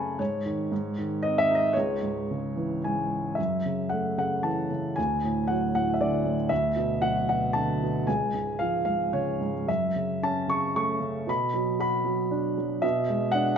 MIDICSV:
0, 0, Header, 1, 2, 480
1, 0, Start_track
1, 0, Key_signature, 4, "minor"
1, 0, Tempo, 519481
1, 181, Time_signature, 3, 2, 24, 8
1, 2104, Tempo, 552486
1, 3063, Key_signature, 3, "minor"
1, 3064, Tempo, 530973
1, 4504, Tempo, 517688
1, 7864, Tempo, 537634
1, 10264, Tempo, 514139
1, 12402, End_track
2, 0, Start_track
2, 0, Title_t, "Grand piano"
2, 0, Program_c, 0, 0
2, 0, Control_c, 0, 64, 127
2, 0, Note_on_c, 0, 42, 57
2, 0, Note_on_c, 0, 49, 49
2, 0, Note_on_c, 0, 57, 48
2, 0, Note_on_c, 0, 61, 49
2, 0, Note_on_c, 0, 80, 61
2, 0, Note_on_c, 0, 81, 64
2, 0, Note_on_c, 0, 83, 63
2, 0, Note_on_c, 0, 85, 82
2, 143, Note_off_c, 0, 42, 0
2, 152, Note_off_c, 0, 61, 0
2, 156, Note_off_c, 0, 57, 0
2, 163, Note_off_c, 0, 49, 0
2, 175, Note_on_c, 0, 73, 74
2, 180, Note_on_c, 0, 44, 57
2, 192, Control_c, 0, 64, 0
2, 193, Note_off_c, 0, 85, 0
2, 194, Note_off_c, 0, 83, 0
2, 197, Note_off_c, 0, 81, 0
2, 198, Note_off_c, 0, 80, 0
2, 357, Control_c, 0, 64, 127
2, 422, Note_on_c, 0, 51, 48
2, 640, Note_off_c, 0, 44, 0
2, 651, Note_off_c, 0, 51, 0
2, 663, Note_on_c, 0, 44, 67
2, 668, Control_c, 0, 64, 0
2, 850, Control_c, 0, 64, 127
2, 908, Note_on_c, 0, 51, 50
2, 1132, Note_on_c, 0, 75, 84
2, 1144, Note_on_c, 0, 60, 51
2, 1158, Note_off_c, 0, 73, 0
2, 1278, Note_on_c, 0, 76, 95
2, 1296, Note_off_c, 0, 75, 0
2, 1390, Note_on_c, 0, 63, 52
2, 1433, Note_on_c, 0, 75, 87
2, 1450, Note_off_c, 0, 76, 0
2, 1588, Note_off_c, 0, 44, 0
2, 1599, Note_off_c, 0, 51, 0
2, 1601, Note_on_c, 0, 73, 79
2, 1604, Note_off_c, 0, 60, 0
2, 1609, Note_off_c, 0, 75, 0
2, 1616, Note_off_c, 0, 63, 0
2, 1624, Control_c, 0, 64, 0
2, 1633, Note_on_c, 0, 37, 61
2, 1792, Control_c, 0, 64, 127
2, 1872, Note_on_c, 0, 44, 49
2, 2131, Note_on_c, 0, 49, 52
2, 2351, Note_on_c, 0, 52, 52
2, 2543, Note_off_c, 0, 73, 0
2, 2584, Note_off_c, 0, 44, 0
2, 2596, Note_on_c, 0, 80, 68
2, 2597, Note_on_c, 0, 44, 50
2, 3036, Note_off_c, 0, 80, 0
2, 3037, Note_on_c, 0, 76, 62
2, 3038, Note_off_c, 0, 37, 0
2, 3047, Note_off_c, 0, 52, 0
2, 3049, Note_off_c, 0, 49, 0
2, 3056, Note_off_c, 0, 44, 0
2, 3066, Note_on_c, 0, 42, 50
2, 3075, Control_c, 0, 64, 0
2, 3240, Control_c, 0, 64, 127
2, 3313, Note_on_c, 0, 49, 43
2, 3497, Note_off_c, 0, 76, 0
2, 3527, Note_on_c, 0, 78, 68
2, 3549, Note_on_c, 0, 57, 47
2, 3770, Note_off_c, 0, 49, 0
2, 3776, Note_off_c, 0, 78, 0
2, 3784, Note_on_c, 0, 49, 42
2, 3789, Note_on_c, 0, 78, 70
2, 4012, Note_on_c, 0, 81, 67
2, 4016, Note_on_c, 0, 52, 49
2, 4034, Note_off_c, 0, 78, 0
2, 4249, Note_off_c, 0, 49, 0
2, 4262, Note_on_c, 0, 49, 44
2, 4468, Note_off_c, 0, 42, 0
2, 4476, Note_off_c, 0, 57, 0
2, 4484, Note_off_c, 0, 52, 0
2, 4488, Note_on_c, 0, 80, 74
2, 4495, Note_off_c, 0, 49, 0
2, 4508, Note_on_c, 0, 38, 58
2, 4511, Note_off_c, 0, 81, 0
2, 4517, Control_c, 0, 64, 0
2, 4691, Control_c, 0, 64, 127
2, 4750, Note_on_c, 0, 45, 43
2, 4967, Note_on_c, 0, 78, 74
2, 4987, Note_on_c, 0, 54, 53
2, 4994, Note_off_c, 0, 80, 0
2, 5208, Note_off_c, 0, 78, 0
2, 5209, Note_off_c, 0, 45, 0
2, 5222, Note_on_c, 0, 78, 76
2, 5223, Note_on_c, 0, 45, 42
2, 5385, Note_off_c, 0, 78, 0
2, 5397, Note_on_c, 0, 76, 56
2, 5458, Note_off_c, 0, 76, 0
2, 5458, Note_on_c, 0, 50, 50
2, 5460, Note_on_c, 0, 74, 74
2, 5676, Note_off_c, 0, 45, 0
2, 5690, Note_on_c, 0, 45, 51
2, 5788, Note_off_c, 0, 74, 0
2, 5895, Note_off_c, 0, 38, 0
2, 5902, Note_off_c, 0, 54, 0
2, 5911, Note_on_c, 0, 76, 82
2, 5916, Note_off_c, 0, 50, 0
2, 5921, Note_off_c, 0, 45, 0
2, 5930, Note_on_c, 0, 38, 61
2, 5940, Control_c, 0, 64, 0
2, 6098, Control_c, 0, 64, 127
2, 6158, Note_on_c, 0, 47, 49
2, 6397, Note_on_c, 0, 78, 85
2, 6399, Note_on_c, 0, 54, 53
2, 6415, Note_off_c, 0, 76, 0
2, 6627, Note_off_c, 0, 78, 0
2, 6634, Note_off_c, 0, 47, 0
2, 6648, Note_on_c, 0, 47, 48
2, 6650, Note_on_c, 0, 78, 76
2, 6876, Note_on_c, 0, 81, 77
2, 6897, Note_off_c, 0, 78, 0
2, 6900, Note_on_c, 0, 50, 50
2, 7131, Note_off_c, 0, 47, 0
2, 7145, Note_on_c, 0, 47, 46
2, 7338, Note_off_c, 0, 38, 0
2, 7340, Note_off_c, 0, 54, 0
2, 7365, Note_off_c, 0, 50, 0
2, 7374, Note_off_c, 0, 47, 0
2, 7374, Note_on_c, 0, 80, 76
2, 7382, Note_off_c, 0, 81, 0
2, 7383, Note_on_c, 0, 37, 56
2, 7385, Control_c, 0, 64, 0
2, 7573, Control_c, 0, 64, 127
2, 7628, Note_on_c, 0, 44, 44
2, 7855, Note_on_c, 0, 77, 74
2, 7871, Note_on_c, 0, 53, 49
2, 7876, Note_off_c, 0, 80, 0
2, 8075, Note_off_c, 0, 77, 0
2, 8078, Note_off_c, 0, 44, 0
2, 8088, Note_on_c, 0, 77, 70
2, 8091, Note_on_c, 0, 44, 41
2, 8340, Note_on_c, 0, 73, 68
2, 8343, Note_on_c, 0, 49, 46
2, 8345, Note_off_c, 0, 77, 0
2, 8571, Note_off_c, 0, 44, 0
2, 8585, Note_on_c, 0, 44, 44
2, 8682, Note_off_c, 0, 73, 0
2, 8799, Note_off_c, 0, 37, 0
2, 8806, Note_off_c, 0, 53, 0
2, 8816, Note_off_c, 0, 49, 0
2, 8822, Note_off_c, 0, 44, 0
2, 8824, Note_on_c, 0, 42, 47
2, 8833, Note_on_c, 0, 76, 72
2, 8844, Control_c, 0, 64, 0
2, 9013, Control_c, 0, 64, 127
2, 9078, Note_on_c, 0, 49, 40
2, 9319, Note_on_c, 0, 61, 47
2, 9324, Note_on_c, 0, 81, 81
2, 9328, Note_off_c, 0, 76, 0
2, 9528, Note_off_c, 0, 49, 0
2, 9542, Note_on_c, 0, 49, 43
2, 9557, Note_on_c, 0, 85, 78
2, 9565, Note_off_c, 0, 81, 0
2, 9782, Note_off_c, 0, 85, 0
2, 9785, Note_on_c, 0, 57, 48
2, 9795, Note_on_c, 0, 85, 80
2, 9999, Note_off_c, 0, 49, 0
2, 10012, Note_on_c, 0, 49, 48
2, 10225, Note_off_c, 0, 42, 0
2, 10232, Note_off_c, 0, 85, 0
2, 10239, Note_off_c, 0, 61, 0
2, 10246, Note_off_c, 0, 57, 0
2, 10247, Note_on_c, 0, 47, 58
2, 10248, Note_off_c, 0, 49, 0
2, 10269, Note_on_c, 0, 83, 84
2, 10275, Control_c, 0, 64, 0
2, 10433, Control_c, 0, 64, 127
2, 10499, Note_on_c, 0, 54, 47
2, 10719, Note_off_c, 0, 83, 0
2, 10739, Note_on_c, 0, 66, 54
2, 10747, Note_on_c, 0, 83, 86
2, 10960, Note_off_c, 0, 54, 0
2, 10974, Note_on_c, 0, 54, 49
2, 11220, Note_on_c, 0, 62, 55
2, 11430, Note_off_c, 0, 83, 0
2, 11454, Note_off_c, 0, 54, 0
2, 11468, Note_on_c, 0, 54, 52
2, 11661, Note_off_c, 0, 47, 0
2, 11673, Note_off_c, 0, 66, 0
2, 11687, Note_off_c, 0, 62, 0
2, 11694, Note_on_c, 0, 76, 81
2, 11700, Note_off_c, 0, 54, 0
2, 11700, Note_on_c, 0, 47, 68
2, 11720, Control_c, 0, 64, 0
2, 11881, Control_c, 0, 64, 127
2, 11940, Note_on_c, 0, 56, 54
2, 12144, Note_off_c, 0, 76, 0
2, 12158, Note_on_c, 0, 78, 92
2, 12183, Note_on_c, 0, 62, 62
2, 12372, Note_off_c, 0, 78, 0
2, 12402, Note_off_c, 0, 47, 0
2, 12402, Note_off_c, 0, 56, 0
2, 12402, Note_off_c, 0, 62, 0
2, 12402, End_track
0, 0, End_of_file